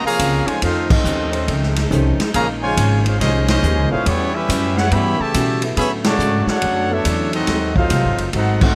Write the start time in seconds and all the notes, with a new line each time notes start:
Already playing: F3 G#3 F4
0.03 C3 F3 A#3 G#4 C#5 F5 A#5, muted upright bass stroke
0.18 C#2 C#3 F3 G#3 C4, kick, hi-hat pedal, ride
0.46 C3 F3 G#3 C#4 D#4 F4 A4 C5 C#5 G#5, muted upright bass stroke, ride
0.62 F2 D#3 F3 A3 C4 C#4 D#4 F4 A4 C5 F5, kick, ride
0.90 A3 C4 D#4 F4 A4 D#5, kick, crash
1.03 D#2 F2 D#3 A3 C#4, hi-hat pedal
1.31 C#4 D#4 A4 C5, ride
1.47 C#2 F2 D#3 A3 C#4, kick, ride
1.63 snare
1.76 snare, ride
1.90 C2 F2 D#3 A3 C#4 D#4 A4 C5, kick, hi-hat pedal
2.18 muted upright bass stroke, snare, ride
2.32 A#1 A#2 C#3 D#3 F3 G#3 A#3 C#4 G#4 C#5 F5 A#5, kick, ride
2.63 C#3 F3 G#3 F4 C5 C#5 G#5
2.76 G#1 A#2 D#3 G#3 C#4, kick, hi-hat pedal, ride
3.05 G#3 C#4 F4 G#4 C5 F5, ride
3.19 C2 A#2 D#3 F3 G#3 C#4 D#4 G#4 C5 D#5, kick, snare, ride
3.47 F3 G#3 C#4 D#4 G#4 C5 D#5, snare, ride
3.62 D#2 A#2 D#3 G#3 C#4, hi-hat pedal
3.77 C#2
3.89 A#1 G#3 B3 C#4 E4 F4 G#4 A4 C5 C#5 F5
4.04 E2 A2 E3 G3 B3 C#4 E4 F#4 G4 C#5, kick, ride
4.34 G3 C#4 E4 G4 B4 E5
4.48 F#2 A2 G3 C#4 F#4, kick, hi-hat pedal, ride
4.76 G3 C#4 E4 F#4 B4 C#5 F#5, snare
4.90 G2 A2 E3 G3 B3 C#4 F#4 G4 C#5 E5 B5, kick, ride
5.19 C#3 E3 A3 G4 C#5 E5 A5, muted upright bass stroke
5.34 A2 B2 G3 C#4 F#4, kick, hi-hat pedal, ride
5.61 F#3 B3 E4 A4, ride
5.76 A2 D3 F#3 A3 B3 C#4 G#4 C#5 E5 B5, kick, ride
6.04 C#3 F#3 A3 F#4 C#5 D5 A5, snare, ride
6.18 G#2 D3 F#3 A3 C#4, hi-hat pedal
6.46 A3 D4 F#4 A4 F#5, muted upright bass stroke, snare
6.50 C#5
6.62 F#2 D3 F#3 A3 C#4, kick, ride
6.89 F#3 A3 B3 D4 E4 A4 C#5
6.94 E5
7.05 E2 D3 F#3 A3 C#4, kick, hi-hat pedal, ride
7.33 F#3 C4 D#4 F#4 A4 D#5, ride
7.47 D#2 G#2 C3 D#3 F#3 A3 C4, kick, snare, ride
7.74 F#3 C4 D#4 F4 A4 C5 F5, kick
7.90 C2 G#2 F#3 A3 C4, kick, hi-hat pedal, ride
8.04 G#1
8.17 F#1, ride
8.32 G#1 G#2 F#3 A3 C4 D#4 F#4 A4 C5, kick, ride
8.36 F#5
8.61 F#3 A3 C4 D#4 F#4 A4 D#5, kick, crash